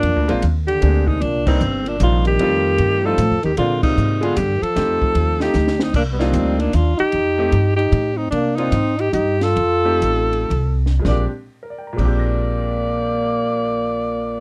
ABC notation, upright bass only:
X:1
M:3/4
L:1/8
Q:"Swing" 1/4=152
K:Bb
V:1 name="Upright bass" clef=bass
(3F,, D,, B,,, E,,2 D,,2 | C,,2 G,,,2 B,,,2 | F,,2 G,,2 (3A,, F,, E,, | B,,2 _A,,2 G,, z |
F,, z E,,2 D,,2 | C,,2 D,,2 E,, z | F,,2 G,,2 A,,2 | C,2 _A,,2 G,,2 |
F,,2 A,,,2 C,,2 | B,,, z2 B,,,3- | B,,,6 |]